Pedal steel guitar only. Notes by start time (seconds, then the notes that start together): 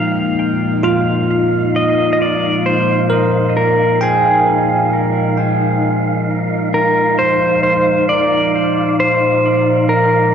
Already playing: F5
0.84 F5
1.76 D#5
2.13 D#5
2.22 D5
2.66 C5
3.57 A#4
4.03 G#4
6.74 A#4
7.19 C5
7.63 C5
8.09 D5
9.00 C5
9.89 A#4